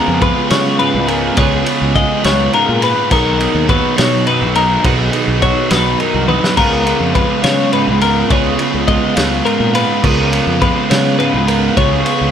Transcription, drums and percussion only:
0.21 kick, ride
0.50 snare, ride
0.79 ride
1.08 ride
1.37 kick, ride
1.66 ride
1.96 kick, ride
2.24 snare, ride
2.53 ride
2.82 ride
3.11 kick, crash
3.40 ride
3.69 kick, ride
3.98 snare, ride
4.27 ride
4.55 ride
4.84 kick, ride
5.13 ride
5.42 kick, ride
5.71 snare, ride
6.00 ride
6.29 high tom
6.44 snare
6.57 kick, crash
6.87 ride
7.15 kick, ride
7.44 snare, ride
7.73 ride
8.01 ride
8.30 kick, ride
8.59 ride
8.88 kick, ride
9.17 snare, ride
9.46 ride
9.75 ride
10.04 kick, crash
10.33 ride
10.62 kick, ride
10.91 snare, ride
11.20 ride
11.48 ride
11.77 kick, ride
12.06 ride

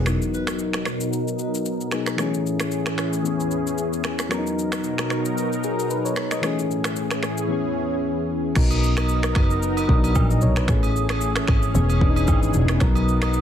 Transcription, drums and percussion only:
0.06 finger snap, cross-stick, shaker
0.22 shaker
0.34 shaker
0.47 finger snap, cross-stick, shaker
0.59 shaker
0.73 finger snap, cross-stick, shaker
0.85 finger snap, cross-stick, shaker
1.01 shaker
1.13 shaker
1.28 shaker
1.39 shaker
1.55 shaker
1.66 shaker
1.81 shaker
1.91 finger snap, cross-stick, shaker
2.06 finger snap, cross-stick, shaker
2.18 finger snap, cross-stick, shaker
2.34 shaker
2.46 shaker
2.60 finger snap, cross-stick, shaker
2.71 shaker
2.86 finger snap, cross-stick, shaker
2.98 finger snap, cross-stick, shaker
3.13 shaker
3.25 shaker
3.40 shaker
3.51 shaker
3.67 shaker
3.78 shaker
3.93 shaker
4.04 finger snap, cross-stick, shaker
4.19 finger snap, cross-stick, shaker
4.31 finger snap, cross-stick, shaker
4.47 shaker
4.59 shaker
4.72 finger snap, cross-stick, shaker
4.84 shaker
4.98 finger snap, cross-stick, shaker
5.10 finger snap, cross-stick, shaker
5.25 shaker
5.38 shaker
5.53 shaker
5.64 shaker
5.80 shaker
5.90 shaker
6.06 shaker
6.16 finger snap, cross-stick, shaker
6.31 finger snap, cross-stick, shaker
6.43 finger snap, cross-stick, shaker
6.59 shaker
6.71 shaker
6.84 finger snap, cross-stick, shaker
6.96 shaker
7.11 finger snap, cross-stick, shaker
7.23 finger snap, cross-stick, shaker
7.38 shaker
8.55 finger snap, kick, cross-stick, crash, shaker
8.71 high agogo, shaker
8.84 shaker
8.97 finger snap, cross-stick, high agogo, shaker
9.09 shaker
9.23 finger snap, cross-stick, shaker
9.35 finger snap, kick, cross-stick, high agogo
9.50 shaker
9.63 shaker
9.77 high agogo, shaker
9.89 kick
10.04 high agogo, shaker
10.15 kick, low woodblock, shaker
10.31 shaker
10.41 shaker
10.56 finger snap, cross-stick, shaker
10.68 finger snap, kick, cross-stick, shaker
10.83 high agogo, shaker
10.96 shaker
11.09 finger snap, cross-stick, high agogo, shaker
11.21 shaker
11.36 finger snap, cross-stick, shaker
11.48 finger snap, kick, cross-stick, high agogo
11.63 shaker
11.75 shaker
11.90 high agogo, shaker
12.01 kick
12.16 high agogo, shaker
12.28 kick, low woodblock, shaker
12.43 shaker
12.54 shaker
12.68 finger snap, cross-stick, shaker
12.80 finger snap, kick, cross-stick, shaker
12.95 high agogo, shaker
13.09 shaker
13.22 finger snap, cross-stick, high agogo, shaker
13.34 shaker

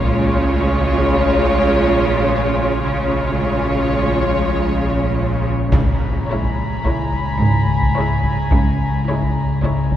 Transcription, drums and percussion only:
0.03 taiko
5.72 taiko
6.42 taiko
6.85 taiko
7.12 taiko
7.81 taiko
8.23 taiko
8.51 taiko
9.21 taiko
9.64 taiko
9.91 taiko

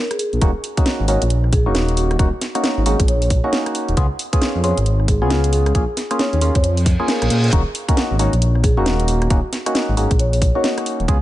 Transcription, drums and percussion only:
0.11 cross-stick, closed hi-hat
0.19 open hi-hat
0.33 closed hi-hat
0.42 kick, closed hi-hat
0.64 open hi-hat
0.77 kick, closed hi-hat
0.86 snare
1.08 open hi-hat
1.22 closed hi-hat
1.30 closed hi-hat
1.44 cross-stick
1.53 kick, open hi-hat
1.75 snare
1.89 closed hi-hat
1.97 open hi-hat
2.11 cross-stick, closed hi-hat
2.19 kick, closed hi-hat
2.41 snare, open hi-hat
2.55 cross-stick, closed hi-hat
2.64 snare
2.86 open hi-hat
3.00 kick, closed hi-hat
3.08 closed hi-hat
3.22 open hi-hat
3.30 kick, open hi-hat
3.53 snare
3.66 cross-stick, closed hi-hat
3.75 open hi-hat
3.89 closed hi-hat
3.97 kick, closed hi-hat
4.19 open hi-hat
4.33 kick, closed hi-hat
4.42 snare
4.64 open hi-hat
4.78 closed hi-hat
4.86 closed hi-hat
5.00 cross-stick
5.08 kick, open hi-hat
5.30 snare
5.44 closed hi-hat
5.53 open hi-hat
5.66 cross-stick, closed hi-hat
5.75 kick, closed hi-hat
5.97 snare, open hi-hat
6.11 cross-stick, closed hi-hat
6.19 snare
6.33 closed hi-hat
6.41 open hi-hat
6.55 kick, closed hi-hat
6.64 closed hi-hat
6.77 open hi-hat
6.86 kick, open hi-hat
7.08 snare
7.22 cross-stick, closed hi-hat
7.30 open hi-hat
7.44 closed hi-hat
7.53 kick, closed hi-hat
7.75 open hi-hat
7.89 kick, closed hi-hat
7.97 snare
8.19 open hi-hat
8.33 closed hi-hat
8.42 closed hi-hat
8.55 cross-stick
8.64 kick, open hi-hat
8.86 snare
9.00 closed hi-hat
9.08 open hi-hat
9.22 cross-stick, closed hi-hat
9.30 kick, closed hi-hat
9.53 snare, open hi-hat
9.66 cross-stick, closed hi-hat
9.75 snare
9.97 open hi-hat
10.11 kick, closed hi-hat
10.19 closed hi-hat
10.33 open hi-hat
10.42 kick, open hi-hat
10.64 snare
10.78 cross-stick, closed hi-hat
10.86 open hi-hat
11.00 closed hi-hat
11.08 kick, closed hi-hat

